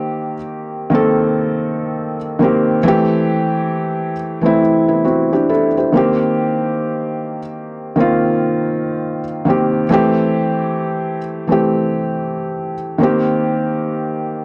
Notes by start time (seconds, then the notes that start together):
Already playing: D#3 A#3 C4 G4
0.90 D#3 A#3 C4
0.95 A4
2.39 D#3 A#3 C4
2.44 G4
2.83 E3 A3 C4
2.88 G4
4.41 E3 A3 C4
4.46 E4
4.88 B3 E4
5.04 C4 F#4
5.33 D4 G4
5.49 E4 A4
5.77 G4 C5
5.92 D#3 A#3 C4
5.97 G4
7.96 D#3 A#3 C4
8.00 F4
9.45 D#3 A#3 C4
9.50 G4
9.89 E3 A3 C4
9.93 G4
11.47 E3 A3 C4
11.52 G4
12.98 D#3 A#3 C4
13.03 G4